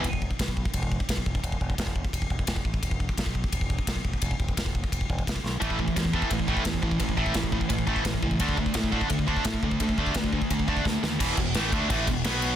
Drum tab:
CC |----------------|----------------|----------------|----------------|
RD |b---b---b---b---|b---b---b---b---|b---b---b---b---|b---b---b---b---|
SD |----o-------o---|----o-------o---|----o-------o---|----o-------o-o-|
BD |oooooooooooooooo|oooooooooooooooo|oooooooooooooooo|oooooooooooooo--|

CC |----------------|----------------|----------------|----------------|
RD |b---b---b---b---|b---b---b---b---|b---b---b---b---|b---b---b-------|
SD |----o-------o---|----o-------o---|----o-------o---|----o-------o-o-|
BD |oooooooooooooooo|oooooooooooooooo|oooooooooooooooo|ooooooooooooo---|

CC |x-x-x-x-x-x-x-x-|
RD |----------------|
SD |----o-------o---|
BD |o-o---o-o-o-----|